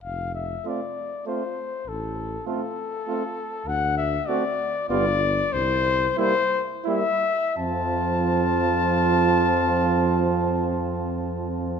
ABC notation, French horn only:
X:1
M:3/4
L:1/8
Q:1/4=93
K:F
V:1 name="French horn"
z2 C2 C2 | z2 C2 C2 | z2 C2 =B,2 | z2 B,2 B,2 |
C6- | C6 |]